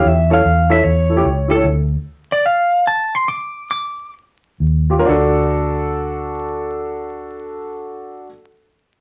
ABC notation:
X:1
M:4/4
L:1/16
Q:"Swing" 1/4=133
K:D
V:1 name="Lead electric guitar"
e2 =f4 e2 c6 A2 | z6 d2 =f4 a2 =c'2 | d'4 d'4 z8 | z16 |
z16 |]
V:2 name="Upright piano"
z2 [CEA] z3 [CEA] z3 [EA] [CEG] z2 [EG] [CEA] | z16 | z12 z2 [=FG] [_DF_B] | [DFA]16- |
[DFA]16 |]
V:3 name="Fingered electric bass" clef=bass
E,,4 E,,4 E,,4 C,,4 | D,,4 z12 | z12 _E,,4 | D,,16- |
D,,16 |]